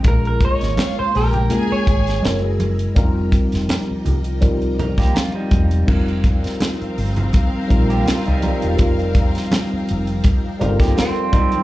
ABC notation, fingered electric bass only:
X:1
M:4/4
L:1/16
Q:"Swing 16ths" 1/4=82
K:Fm
V:1 name="Fingered electric bass" clef=bass
B,,,2 z A,,, z2 B,,,2 z2 A,,,2 _G,,,4 | F,,,2 z F,,, z2 C,,4- C,, z3 =E,,,2 | F,,,3 z3 G,,,2 z2 B,,,2 z C,, z =E,,, | F,,,3 z3 F,,,2 z2 G,,,2 z4 |]